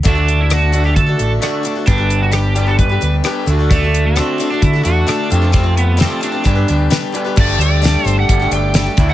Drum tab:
CC |--------|--------|--------|--------|
HH |xxxxxxxx|xxxxxxxx|xxxxxxxx|xxxxxxxx|
SD |--r---r-|--r---r-|--r---r-|--o---o-|
BD |o---o---|o---o---|o---o---|o---o---|

CC |x-------|
HH |-xxxxxxx|
SD |--o---o-|
BD |o---o--o|